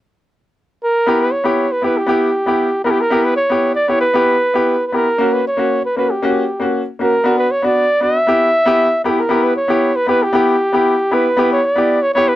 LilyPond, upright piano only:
\new Staff \with { instrumentName = "Upright piano" } { \time 2/4 \tempo 4 = 116 r2 | <b e' g'>8 r16 <b e' g'>16 r8 <b e' g'>16 r16 | <b e' g'>8 r16 <b e' g'>16 r8 <b e' g'>16 r16 | <b e' g'>8 r16 <b e' g'>16 r8 <b e' g'>16 r16 |
<b e' g'>8 r16 <b e' g'>16 r8 <b e' g'>16 r16 | <ais cis' fis'>8 r16 <ais cis' fis'>16 r8 <ais cis' fis'>16 r16 | <ais cis' fis'>8 r16 <ais cis' fis'>16 r8 <ais cis' fis'>16 r16 | <b d' fis'>8 r16 <b d' fis'>16 r8 <b d' fis'>16 r16 |
<b e' g'>8 r16 <b e' g'>16 r8 <b e' g'>16 r16 | <b e' g'>8 r16 <b e' g'>16 r8 <b e' g'>16 r16 | <b e' g'>8 r16 <b e' g'>16 r8 <b e' g'>16 r16 | <b e' g'>8 r16 <b e' g'>16 r8 <b e' g'>16 r16 | }